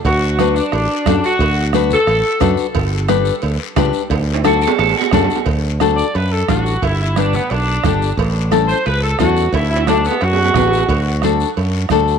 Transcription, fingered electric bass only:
\new Staff \with { instrumentName = "Fingered electric bass" } { \clef bass \time 4/4 \key d \major \tempo 4 = 177 d,2 a,,8 r8 fis,8 r8 | d,2 a,,8 r8 fis,8 r8 | g,,2 d,8 r8 cis,8 r8 | d,2 a,,8 r8 fis,8 r8 |
d,2 fis,4 a,,4 | g,,2 b,,4 g,,4 | a,,2 cis,4 e,4 | d,2 fis,4 a,,4 |
d,2 fis,4 d,4 | }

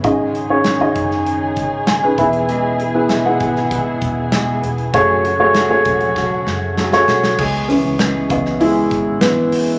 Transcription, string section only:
\new Staff \with { instrumentName = "String section" } { \clef bass \time 4/4 \key cis \minor \tempo 4 = 98 << { gis'1~ | gis'1 | fis'1 | r1 | } \\ { <cis dis dis'>2.~ <cis dis dis'>8 <b, e e'>8~ | <b, e e'>1 | <cis fis a>1 | r1 | } >> }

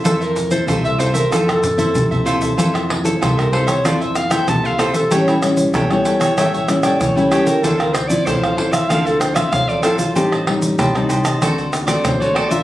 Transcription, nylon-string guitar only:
\new Staff \with { instrumentName = "Nylon-string guitar" } { \time 4/4 \key f \major \tempo 4 = 95 << { <c' e' a'>8. <c' e' a'>8. <c' e' a'>16 r16 <c' e' a'>8 r16 <c' e' a'>8. <c' e' a'>8 | <c' e' a'>8. <c' e' a'>8. <c' e' a'>16 r16 <c' e' a'>8. <c' e' a'>8. <c' e' a'>16 r16 | <g cis' e'>8 <g cis' e'>8 r16 <g cis' e'>8. <g cis' e'>16 r16 <g cis' e'>8 r16 <g cis' e'>8. | <f c' e'>8 r16 <f c' e'>8. <f c' e'>8 <f c' e'>8. <f c'>8. <f c' e'>16 r16 |
<g c' ees'>16 r16 <g c' ees'>8. <g c' ees'>8. <a c' fis'>8. <a c' fis'>8 <a c' fis'>8 <d' f' bes'>16 | } \\ { f4 c4 f4 c4 | f4 c4 f4 c4 | a,4 e4 a,4 e4 | d4 a,4 d4 a,4 |
a,4 a,4 d4 a,4 | } >> }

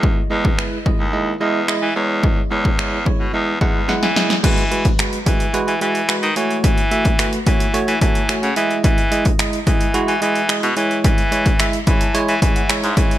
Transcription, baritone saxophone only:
\new Staff \with { instrumentName = "Baritone saxophone" } { \clef bass \time 4/4 \key e \major \tempo 4 = 109 e,8 e,8. r8 dis,8. e,8. e16 e,8~ | e,8 e,4~ e,16 b,16 e,8 e,8. e8. | e4 r8 e8. e16 e8. dis16 e8 | e4. e8. e16 e8. cis16 e8 |
e4 r8 e8. e16 e8. b,16 e8 | e4. e8. e16 e8. gis,16 e8 | }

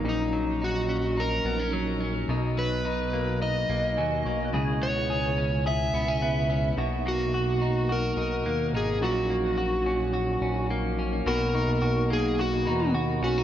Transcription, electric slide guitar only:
\new Staff \with { instrumentName = "Electric slide guitar" } { \time 4/4 \key b \major \tempo 4 = 107 dis'4 fis'4 ais'4 r4 | r8 b'4. dis''2 | r8 cis''4. e''2 | r8 fis'4. ais'4. gis'8 |
fis'2. r4 | ais'4. gis'8 fis'4 r8 fis'8 | }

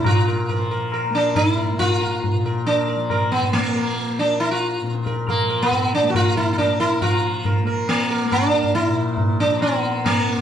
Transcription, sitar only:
\new Staff \with { instrumentName = "Sitar" } { \time 4/4 \key bes \major \tempo 4 = 138 << { r8 bes'8 bes'8 bes'8 bes'8 r4 bes'8 | r8 bes'8 r8 bes'8 r8 bes'8 bes'8 r8 | r8 bes'8 r2 r8 bes'8 | bes'8 bes'8 r4 bes'8 bes'8 bes'8 bes'8 |
r4 bes'8 bes'8 r8 bes'8 r8 bes'8 | r1 | } \\ { f'4. r4 d'8 e'4 | f'2 d'4. ces'8 | bes4. d'8 e'16 f'4. r16 | bes8. ces'8. d'16. ges'32 f'8 e'16. e'32 d'8 e'8 |
f'4. r8 bes4 d'4 | e'4. d'8 ces'4 bes4 | } >> }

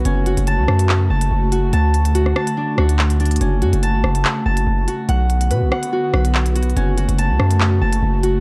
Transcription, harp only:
\new Staff \with { instrumentName = "Harp" } { \time 4/4 \key fis \minor \tempo 4 = 143 cis'8 fis'8 a''4. a''4 fis'8 | a''4 fis'8 a''8 d'8 fis'4 d'8 | cis'8 fis'8 a''4. a''4 fis'8 | fis''4 b'8 fis''8 fis'8 b'4 fis'8 |
cis'8 fis'8 a''4. a''4 fis'8 | }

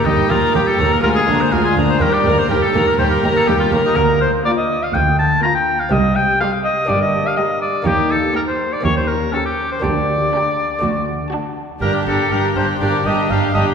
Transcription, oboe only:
\new Staff \with { instrumentName = "Oboe" } { \time 4/4 \key g \minor \tempo 4 = 123 ees'8 f'8 g'16 a'8 bes'16 bes'16 aes'8 c''16 bes'16 aes'8 c''16 | bes'16 d''8 c''16 bes'16 a'8 bes'16 c''16 bes'8 a'16 g'16 f'8 ees'16 | bes'8 c''8 d''16 ees''8 f''16 g''8 a''8 bes''16 g''8 f''16 | ees''8 g''8 f''8 ees''8 d''16 ees''8 f''16 ees''8 d''8 |
g'8 a'8 bes'16 c''8 d''16 des''16 c''16 bes'8 a'16 g'8 c''16 | d''2. r4 | bes'8 a'8 bes'8 c''8 d''8 ees''8 f''8 ees''8 | }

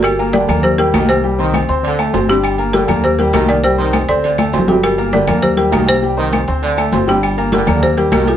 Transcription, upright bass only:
\new Staff \with { instrumentName = "Upright bass" } { \clef bass \time 4/4 \key g \minor \tempo 4 = 200 g,,4. ees,4. c,4~ | c,4. d,4. g,,4~ | g,,4. ees,4. c,4~ | c,4. d,4. g,,4~ |
g,,4. ees,4. c,4~ | c,4. d,4. g,,4~ | g,,4. ees,4. c,4 | }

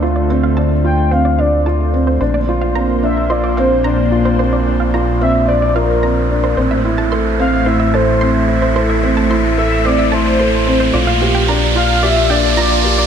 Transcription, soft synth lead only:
\new Staff \with { instrumentName = "Soft synth lead" } { \time 4/4 \key a \phrygian \tempo 4 = 110 r4. g''8 f''8 d''4. | r4. e''8 d''8 c''4. | r4. e''8 d''8 bes'4. | r4. f''8 e''8 c''4. |
r4. e''8 d''8 c''4. | r4. f''8 e''8 d''4. | }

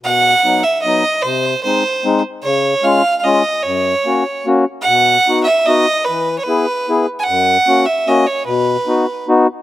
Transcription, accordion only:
\new Staff \with { instrumentName = "Accordion" } { \time 3/4 \key b \major \tempo 4 = 150 b,4 <fis b dis'>8 r8 <fis b dis'>8 r8 | bis,4 <gis bis dis'>8 r8 <gis bis dis'>8 r8 | cis4 <gis cis' eis'>8 r8 <gis cis' eis'>8 r8 | fis,4 <ais cis' fis'>8 r8 <ais cis' fis'>8 r8 |
b,4 <b dis' fis'>8 r8 <b dis' fis'>8 r8 | e4 <b e' gis'>8 r8 <b e' gis'>8 r8 | fis,4 <ais cis' fis'>8 r8 <ais cis' fis'>8 r8 | b,4 <b dis' fis'>8 r8 <b dis' fis'>8 r8 | }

